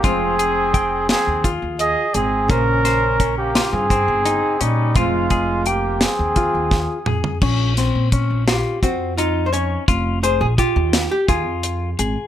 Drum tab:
CC |--------------|--------------|--------------|x-------------|
HH |x-x-x-x-x-x-x-|x-x-x-x-x-x-x-|x-x-x-x-x-----|--x-x-x-x-x-x-|
SD |------o-------|--o---o-------|------o---o---|--o---o-------|
T2 |--------------|--------------|------------o-|--------------|
FT |--------------|--------------|-------------o|--------------|
BD |o---o---o-----|o---o---o-----|o-o-----o-o---|o---o---o-----|

CC |--------------|
HH |x-x-x-x-x-x-x-|
SD |------o-------|
T2 |--------------|
FT |--------------|
BD |o---o---o-----|